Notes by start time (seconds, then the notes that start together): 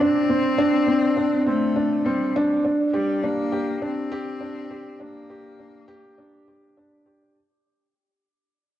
Already playing: C4
0.00 C4 D4
0.29 C4
0.58 D4
0.87 C4
1.17 D4
1.47 A3 C4
1.76 D4
2.05 G3 C4
2.36 D4
2.64 D4
2.93 G3 G4
3.23 A#3 D4
3.52 G4
3.82 C4 D4
4.12 G4
4.41 D4
4.70 G4
5.00 A#3 D4
5.30 G4
5.59 D4
5.88 G4
6.18 D4
6.48 G4
6.77 D4
7.06 G4